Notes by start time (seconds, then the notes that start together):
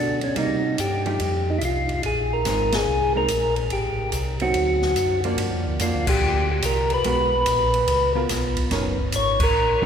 Already playing: B2 D4
0.21 C#4, ride
0.36 C3 G3 A#3 D#4, kick, ride
0.78 G2 G4, kick, hi-hat pedal, ride
1.06 F3 A3 D#4 G4, ride
1.20 F2, kick, ride
1.50 D#4
1.59 C2 E4, kick, hi-hat pedal, ride
1.65 F4
1.89 ride
2.03 A#1 G#4, kick, ride
2.33 A#4
2.45 G#1 G#3 C4 D#4, kick, snare, hi-hat pedal, ride
2.72 G#4, snare, ride
2.87 C2
3.16 G#3 C4 D#4 A#4
3.28 A#1, kick, hi-hat pedal, ride
3.56 ride
3.70 A1 G4, kick, ride
4.12 C2, kick, hi-hat pedal, ride
4.40 F#3 C4 D#4 F#4, ride
4.54 D2, kick, ride
4.82 snare
4.96 F#2, kick, hi-hat pedal, ride
5.24 F3 A#3 D4, ride
5.38 G2, kick, ride
5.52 F2
5.66 D2
5.79 F2 F3 A#3 D4 F4, kick, hi-hat pedal, ride
5.94 D2
6.07 A#1 G4, kick, crash
6.21 D2
6.51 G4
6.62 C2 A#4, kick, hi-hat pedal, ride
6.90 B4, ride
7.04 B1 G#3 B3 F#4 A#4, kick, ride
7.46 A#1, kick, hi-hat pedal, ride
7.74 ride
7.87 C#2, kick, ride
8.15 B3 F4 A#4
8.29 B1, kick, snare, hi-hat pedal, ride
8.57 kick, ride
8.71 F#1 F#3 C#4 D#4 A#4, kick, snare, ride
8.98 kick
9.12 G#1 C#5, kick, hi-hat pedal, ride
9.40 A#4, kick, crash
9.54 A#1
9.81 A#1 F#3 C#4 D#4